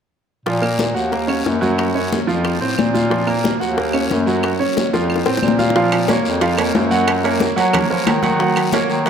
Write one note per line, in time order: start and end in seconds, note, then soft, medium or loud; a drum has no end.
0.46 0.92 A#2 medium
0.46 0.60 F3 medium
0.46 0.60 F4 medium
0.46 high bongo medium
0.46 high conga soft
0.46 long guiro medium
0.62 0.89 A#3 medium
0.62 0.90 A#4 medium
0.62 high bongo soft
0.62 high conga soft
0.62 claves medium
0.79 high bongo medium
0.79 high conga medium
0.79 short guiro medium
0.95 1.42 D#2 medium
0.95 1.09 F#4 medium
0.95 1.09 F#5 medium
0.95 high bongo soft
0.95 high conga soft
0.95 short guiro medium
1.12 1.26 A#3 medium
1.12 1.26 A#4 medium
1.12 high bongo medium
1.12 high conga soft
1.12 long guiro medium
1.28 1.55 C#4 medium
1.28 1.55 C#5 medium
1.28 high bongo soft
1.28 high conga soft
1.28 claves medium
1.45 2.22 F#2 medium
1.45 high bongo soft
1.45 low bongo medium
1.45 high conga medium
1.45 short guiro medium
1.61 1.89 F#3 medium
1.61 1.89 F#4 medium
1.61 high conga medium
1.61 short guiro medium
1.78 high bongo medium
1.78 high conga soft
1.78 long guiro medium
1.78 claves medium
1.95 2.22 C#4 medium
1.95 2.22 C#5 medium
1.95 high bongo soft
1.95 high conga soft
2.12 high bongo medium
2.12 high conga medium
2.12 short guiro medium
2.27 2.59 F2 medium
2.27 2.55 F3 medium
2.27 2.55 F4 medium
2.27 high bongo soft
2.27 high conga soft
2.27 short guiro medium
2.45 high bongo medium
2.45 high conga soft
2.45 long guiro medium
2.45 claves medium
2.61 2.77 A2 medium
2.61 2.88 C4 medium
2.61 2.88 C5 medium
2.61 high bongo soft
2.61 high conga soft
2.78 3.55 A#2 medium
2.78 high bongo soft
2.78 low bongo medium
2.78 high conga medium
2.78 short guiro medium
2.78 claves medium
2.94 3.08 F4 medium
2.94 3.08 F5 medium
2.94 high conga medium
2.94 short guiro medium
3.10 3.24 F3 medium
3.10 3.24 F4 medium
3.10 high bongo medium
3.10 high conga soft
3.10 long guiro medium
3.27 3.54 A#3 medium
3.27 3.54 A#4 medium
3.27 high bongo soft
3.27 high conga soft
3.27 claves medium
3.44 high bongo medium
3.44 high conga medium
3.44 short guiro medium
3.60 4.07 D#2 medium
3.60 3.74 F#4 medium
3.60 3.74 F#5 medium
3.60 high bongo soft
3.60 high conga soft
3.60 short guiro medium
3.77 3.91 A#3 medium
3.77 3.91 A#4 medium
3.77 high bongo medium
3.77 high conga soft
3.77 long guiro medium
3.93 4.21 C#4 medium
3.93 4.21 C#5 medium
3.93 high bongo soft
3.93 high conga soft
3.93 claves medium
4.10 4.60 F#2 medium
4.10 high bongo soft
4.10 low bongo medium
4.10 high conga medium
4.10 short guiro medium
4.26 4.54 F#3 medium
4.26 4.54 F#4 medium
4.26 short guiro medium
4.43 high bongo medium
4.43 high conga soft
4.43 long guiro medium
4.43 claves medium
4.59 4.87 C#4 medium
4.59 4.87 C#5 medium
4.59 high bongo soft
4.59 high conga soft
4.77 high bongo medium
4.77 high conga medium
4.77 short guiro medium
4.93 5.24 F2 medium
4.93 5.20 F3 medium
4.93 5.20 F4 medium
4.93 high bongo medium
4.93 high conga soft
4.93 short guiro medium
5.10 high conga soft
5.10 long guiro medium
5.10 claves medium
5.16 high bongo medium
5.26 5.41 A2 medium
5.26 5.53 C4 medium
5.26 5.53 C5 medium
5.26 high bongo medium
5.26 high conga soft
5.37 low bongo medium
5.42 6.19 A#2 medium
5.42 high conga medium
5.42 short guiro medium
5.42 claves medium
5.48 low bongo loud
5.59 5.72 F4 medium
5.59 5.72 F5 medium
5.59 high conga medium
5.59 short guiro medium
5.70 low bongo medium
5.75 6.03 F3 medium
5.75 6.03 F4 medium
5.75 6.03 F5 medium
5.75 high bongo medium
5.75 high conga soft
5.75 long guiro medium
5.92 high bongo soft
5.92 high conga soft
5.92 high timbale medium
5.92 claves medium
6.08 6.36 A#3 medium
6.08 6.36 A#4 medium
6.08 6.36 C#5 medium
6.08 high bongo medium
6.08 high conga medium
6.08 high timbale medium
6.08 short guiro medium
6.25 6.71 F2 medium
6.25 high bongo soft
6.25 high conga soft
6.25 short guiro medium
6.41 6.55 F3 medium
6.41 6.55 F4 medium
6.41 6.55 F5 medium
6.41 high bongo medium
6.41 high conga soft
6.41 high timbale medium
6.41 long guiro medium
6.58 6.85 A#3 medium
6.58 6.85 A#4 medium
6.58 6.85 C#5 medium
6.58 high bongo soft
6.58 high conga soft
6.58 high timbale loud
6.58 claves medium
6.74 7.51 F#2 medium
6.74 high bongo soft
6.74 low bongo medium
6.74 high conga medium
6.74 low timbale medium
6.74 short guiro medium
6.91 7.18 F#3 medium
6.91 7.18 F#4 medium
6.91 7.18 F#5 medium
6.91 short guiro medium
7.07 high bongo medium
7.07 high conga soft
7.07 high timbale loud
7.07 long guiro medium
7.07 claves medium
7.24 7.51 A#3 medium
7.24 7.51 A#4 medium
7.24 7.51 C#5 medium
7.24 high bongo soft
7.24 high conga soft
7.24 high timbale medium
7.40 high bongo medium
7.40 high conga medium
7.40 short guiro medium
7.56 7.70 F#3 medium
7.56 7.88 F#3 medium
7.56 7.70 F#4 medium
7.56 7.70 F#5 medium
7.56 high bongo soft
7.56 high conga soft
7.56 high timbale medium
7.56 short guiro medium
7.73 7.87 A#3 medium
7.73 7.87 A#4 medium
7.73 7.87 C#5 medium
7.73 high bongo medium
7.73 high conga soft
7.73 low conga medium
7.73 high timbale medium
7.73 long guiro medium
7.73 claves medium
7.89 8.05 F3 medium
7.89 8.17 A#3 medium
7.89 8.17 A#4 medium
7.89 8.17 C#5 medium
7.89 high bongo soft
7.89 high conga soft
8.06 8.84 D#3 medium
8.06 high bongo soft
8.06 low bongo medium
8.06 high conga medium
8.06 high timbale loud
8.06 low timbale medium
8.06 short guiro medium
8.06 claves medium
8.23 8.36 F#3 medium
8.23 8.37 F#4 medium
8.23 8.37 F#5 medium
8.23 high conga medium
8.23 high timbale medium
8.23 short guiro medium
8.39 8.67 F#3 medium
8.39 8.67 F#4 medium
8.39 8.67 F#5 medium
8.39 high bongo medium
8.39 high conga soft
8.39 long guiro medium
8.56 high bongo soft
8.56 high conga soft
8.56 high timbale medium
8.56 claves medium
8.73 9.00 A#3 medium
8.73 9.00 A#4 medium
8.73 9.00 C#5 medium
8.73 high bongo medium
8.73 high conga medium
8.73 high timbale medium
8.73 short guiro medium
8.89 9.10 D#3 medium
8.89 high bongo soft
8.89 high conga soft
8.89 short guiro medium
9.06 9.10 F#3 medium
9.06 9.10 F#4 medium
9.06 9.10 F#5 medium
9.06 high bongo medium
9.06 high conga soft
9.06 long guiro medium